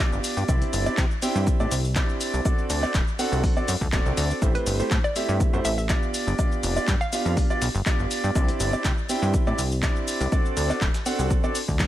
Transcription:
0.00 B3 D4 F4 G4 D5
0.12 G1, shaker
0.24 open hi-hat, shaker
0.37 G2, shaker
0.48 C2 C4 D4 E4 G4 D5, kick, shaker
0.62 closed hi-hat, shaker
0.73 G1, open hi-hat, shaker
0.86 C4 D4 E4 G4 D5, shaker
0.97 C3, kick, snare, clap, shaker
1.11 shaker
1.22 C4 D4 E4 G4 G5, open hi-hat, shaker
1.35 G2, shaker
1.47 kick, shaker
1.60 A2 C4 D4 E4 G4 D5, shaker
1.71 C2, open hi-hat, shaker
1.85 shaker
1.96 C4 D4 E4 G4 D5, kick, snare, clap, shaker
2.09 shaker
2.21 open hi-hat, shaker
2.34 C2, shaker
2.45 C4 D4 F#4 A4 D5, kick, shaker
2.58 shaker
2.70 D2, open hi-hat, shaker
2.83 C4 D4 F#4 A4 D5, clap, shaker
2.94 D1, kick, snare, clap, shaker
3.08 shaker
3.19 C4 D4 F#4 A4 F#5, open hi-hat, shaker
3.32 C2, shaker
3.44 kick, open hi-hat, shaker
3.57 C4 D4 F#4 A4 D5, shaker
3.68 F#2, open hi-hat, shaker
3.81 D2, kick, shaker
3.92 D1 C4 D4 F#4 A4 D5, kick, snare, clap, shaker
4.06 C2, shaker
4.17 D2, open hi-hat, shaker
4.30 shaker
4.42 A1 A3 C4 E4 G4 C5, kick, shaker
4.55 B4, closed hi-hat, shaker
4.67 G1, open hi-hat, shaker
4.80 A3 C4 E4 G4 C5, shaker
4.91 A2, kick, snare, clap, shaker
5.04 D5, shaker
5.16 A3 C4 E4 G4 E5, open hi-hat, shaker
5.29 G2, shaker
5.40 kick, shaker
5.53 F#2 A3 C4 E4 G4 C5, shaker
5.65 A1 E5, open hi-hat, shaker
5.78 E5, shaker
5.89 B3 D4 F4 G4 D5, kick, snare, clap, shaker
6.03 shaker
6.14 open hi-hat, shaker
6.27 G1, shaker
6.39 B3 D4 F4 G4 D5, kick, shaker
6.52 shaker
6.63 F1, open hi-hat, shaker
6.76 B3 D4 F4 G4 D5, shaker
6.88 G2, kick, snare, clap, shaker
7.01 F5, shaker
7.12 B3 D4 F4 G4 F5, open hi-hat, shaker
7.25 F2, shaker
7.37 kick, open hi-hat, shaker
7.50 B3 D4 F4 G4 D5, shaker
7.62 B1, snare, open hi-hat, shaker
7.75 G1, shaker
7.86 B3 D4 F4 G4 D5, kick, snare, clap, shaker
7.99 G1, shaker
8.11 open hi-hat, shaker
8.24 G2, shaker
8.35 C2 C4 D4 E4 G4 D5, kick, shaker
8.48 closed hi-hat, shaker
8.60 G1, open hi-hat, shaker
8.73 C4 D4 E4 G4 D5, shaker
8.84 C3, kick, snare, clap, shaker
8.98 shaker
9.09 C4 D4 E4 G4 G5, open hi-hat, shaker
9.22 G2, shaker
9.34 kick, shaker
9.47 A2 C4 D4 E4 G4 D5, shaker
9.58 C2, open hi-hat, shaker
9.72 shaker
9.83 C4 D4 E4 G4 D5, kick, snare, clap, shaker
9.96 shaker
10.08 open hi-hat, shaker
10.21 C2, closed hi-hat, shaker
10.32 C4 D4 F#4 A4 D5, kick, shaker
10.45 shaker
10.57 D2, open hi-hat, shaker
10.69 C4 D4 F#4 A4 D5, clap, shaker
10.81 D1, kick, clap, shaker
10.94 snare, shaker
11.06 C4 D4 F#4 A4 F#5, open hi-hat, shaker
11.19 C2, shaker
11.31 kick, shaker
11.44 C4 D4 F#4 A4 D5, shaker
11.55 open hi-hat, shaker
11.68 D2, kick, shaker
11.79 kick, snare, clap, shaker

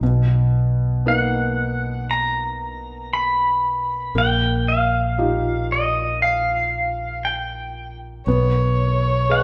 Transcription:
0.01 B1 B2
1.06 A#3 B3 D#4 F#5
2.11 A#5
3.13 B5
4.15 A#1 A#3 G5
4.68 F5
5.18 D#4 F4 G4
5.72 D#5
6.22 F5
7.25 G5
8.27 B1 B3 C#5
9.30 G#4 B4 D#5 F#5

